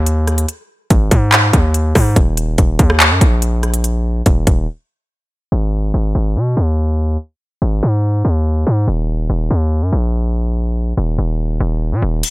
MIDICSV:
0, 0, Header, 1, 3, 480
1, 0, Start_track
1, 0, Tempo, 419580
1, 555, Time_signature, 4, 2, 24, 8
1, 14074, End_track
2, 0, Start_track
2, 0, Title_t, "808-style bass"
2, 0, Program_c, 0, 38
2, 0, Note_on_c, 0, 39, 110
2, 526, Note_off_c, 0, 39, 0
2, 1035, Note_on_c, 0, 32, 109
2, 1265, Note_off_c, 0, 32, 0
2, 1274, Note_on_c, 0, 44, 106
2, 1735, Note_off_c, 0, 44, 0
2, 1755, Note_on_c, 0, 39, 110
2, 2216, Note_off_c, 0, 39, 0
2, 2235, Note_on_c, 0, 44, 109
2, 2465, Note_off_c, 0, 44, 0
2, 2475, Note_on_c, 0, 27, 112
2, 2936, Note_off_c, 0, 27, 0
2, 2956, Note_on_c, 0, 27, 108
2, 3186, Note_off_c, 0, 27, 0
2, 3194, Note_on_c, 0, 39, 108
2, 3555, Note_on_c, 0, 42, 101
2, 3572, Note_off_c, 0, 39, 0
2, 3669, Note_off_c, 0, 42, 0
2, 3675, Note_on_c, 0, 34, 112
2, 4829, Note_off_c, 0, 34, 0
2, 4875, Note_on_c, 0, 27, 113
2, 5105, Note_off_c, 0, 27, 0
2, 5114, Note_on_c, 0, 27, 104
2, 5345, Note_off_c, 0, 27, 0
2, 6315, Note_on_c, 0, 32, 110
2, 6775, Note_off_c, 0, 32, 0
2, 6795, Note_on_c, 0, 32, 104
2, 7025, Note_off_c, 0, 32, 0
2, 7035, Note_on_c, 0, 32, 108
2, 7275, Note_on_c, 0, 47, 100
2, 7292, Note_off_c, 0, 32, 0
2, 7503, Note_off_c, 0, 47, 0
2, 7515, Note_on_c, 0, 39, 105
2, 8206, Note_off_c, 0, 39, 0
2, 8715, Note_on_c, 0, 32, 104
2, 8945, Note_off_c, 0, 32, 0
2, 8955, Note_on_c, 0, 44, 102
2, 9416, Note_off_c, 0, 44, 0
2, 9434, Note_on_c, 0, 39, 109
2, 9895, Note_off_c, 0, 39, 0
2, 9914, Note_on_c, 0, 44, 103
2, 10145, Note_off_c, 0, 44, 0
2, 10154, Note_on_c, 0, 27, 108
2, 10615, Note_off_c, 0, 27, 0
2, 10634, Note_on_c, 0, 27, 106
2, 10865, Note_off_c, 0, 27, 0
2, 10874, Note_on_c, 0, 39, 107
2, 11234, Note_on_c, 0, 42, 99
2, 11251, Note_off_c, 0, 39, 0
2, 11348, Note_off_c, 0, 42, 0
2, 11354, Note_on_c, 0, 34, 108
2, 12509, Note_off_c, 0, 34, 0
2, 12554, Note_on_c, 0, 27, 106
2, 12785, Note_off_c, 0, 27, 0
2, 12794, Note_on_c, 0, 27, 106
2, 13255, Note_off_c, 0, 27, 0
2, 13274, Note_on_c, 0, 27, 109
2, 13635, Note_on_c, 0, 46, 98
2, 13652, Note_off_c, 0, 27, 0
2, 13749, Note_off_c, 0, 46, 0
2, 13754, Note_on_c, 0, 27, 104
2, 13985, Note_off_c, 0, 27, 0
2, 14074, End_track
3, 0, Start_track
3, 0, Title_t, "Drums"
3, 74, Note_on_c, 9, 42, 72
3, 189, Note_off_c, 9, 42, 0
3, 314, Note_on_c, 9, 37, 61
3, 314, Note_on_c, 9, 42, 45
3, 429, Note_off_c, 9, 37, 0
3, 429, Note_off_c, 9, 42, 0
3, 434, Note_on_c, 9, 42, 72
3, 549, Note_off_c, 9, 42, 0
3, 555, Note_on_c, 9, 42, 71
3, 670, Note_off_c, 9, 42, 0
3, 1033, Note_on_c, 9, 42, 63
3, 1036, Note_on_c, 9, 36, 107
3, 1148, Note_off_c, 9, 42, 0
3, 1150, Note_off_c, 9, 36, 0
3, 1274, Note_on_c, 9, 36, 106
3, 1274, Note_on_c, 9, 42, 84
3, 1388, Note_off_c, 9, 42, 0
3, 1389, Note_off_c, 9, 36, 0
3, 1514, Note_on_c, 9, 39, 120
3, 1515, Note_on_c, 9, 42, 89
3, 1629, Note_off_c, 9, 39, 0
3, 1630, Note_off_c, 9, 42, 0
3, 1755, Note_on_c, 9, 36, 92
3, 1756, Note_on_c, 9, 42, 72
3, 1869, Note_off_c, 9, 36, 0
3, 1870, Note_off_c, 9, 42, 0
3, 1995, Note_on_c, 9, 42, 72
3, 2109, Note_off_c, 9, 42, 0
3, 2233, Note_on_c, 9, 46, 75
3, 2235, Note_on_c, 9, 36, 99
3, 2235, Note_on_c, 9, 37, 90
3, 2347, Note_off_c, 9, 46, 0
3, 2349, Note_off_c, 9, 37, 0
3, 2350, Note_off_c, 9, 36, 0
3, 2474, Note_on_c, 9, 42, 70
3, 2475, Note_on_c, 9, 36, 117
3, 2589, Note_off_c, 9, 36, 0
3, 2589, Note_off_c, 9, 42, 0
3, 2715, Note_on_c, 9, 42, 83
3, 2830, Note_off_c, 9, 42, 0
3, 2953, Note_on_c, 9, 42, 69
3, 2955, Note_on_c, 9, 36, 106
3, 3068, Note_off_c, 9, 42, 0
3, 3070, Note_off_c, 9, 36, 0
3, 3194, Note_on_c, 9, 36, 103
3, 3194, Note_on_c, 9, 42, 88
3, 3308, Note_off_c, 9, 42, 0
3, 3309, Note_off_c, 9, 36, 0
3, 3316, Note_on_c, 9, 37, 97
3, 3430, Note_off_c, 9, 37, 0
3, 3434, Note_on_c, 9, 39, 122
3, 3435, Note_on_c, 9, 42, 86
3, 3548, Note_off_c, 9, 39, 0
3, 3549, Note_off_c, 9, 42, 0
3, 3675, Note_on_c, 9, 36, 91
3, 3675, Note_on_c, 9, 42, 78
3, 3789, Note_off_c, 9, 36, 0
3, 3790, Note_off_c, 9, 42, 0
3, 3914, Note_on_c, 9, 42, 71
3, 4028, Note_off_c, 9, 42, 0
3, 4154, Note_on_c, 9, 37, 61
3, 4154, Note_on_c, 9, 42, 44
3, 4268, Note_off_c, 9, 37, 0
3, 4268, Note_off_c, 9, 42, 0
3, 4274, Note_on_c, 9, 42, 76
3, 4389, Note_off_c, 9, 42, 0
3, 4394, Note_on_c, 9, 42, 72
3, 4509, Note_off_c, 9, 42, 0
3, 4873, Note_on_c, 9, 42, 63
3, 4875, Note_on_c, 9, 36, 108
3, 4987, Note_off_c, 9, 42, 0
3, 4990, Note_off_c, 9, 36, 0
3, 5113, Note_on_c, 9, 42, 84
3, 5114, Note_on_c, 9, 36, 106
3, 5228, Note_off_c, 9, 42, 0
3, 5229, Note_off_c, 9, 36, 0
3, 13995, Note_on_c, 9, 42, 67
3, 13995, Note_on_c, 9, 49, 95
3, 14074, Note_off_c, 9, 42, 0
3, 14074, Note_off_c, 9, 49, 0
3, 14074, End_track
0, 0, End_of_file